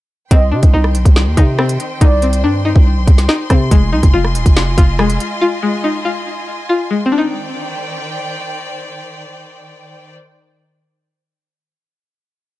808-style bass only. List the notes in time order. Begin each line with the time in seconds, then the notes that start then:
0.31 C2
0.52 C3
0.63 C2
0.74 C2
0.95 B1
1.05 C2
1.27 D#2
1.37 C3
2.01 C2
2.44 G2
2.76 C2
2.97 B1
3.07 C2
3.50 C3
3.71 F1
3.93 C2
4.03 F1
4.14 F1
4.35 D#1
4.46 F1
4.78 F1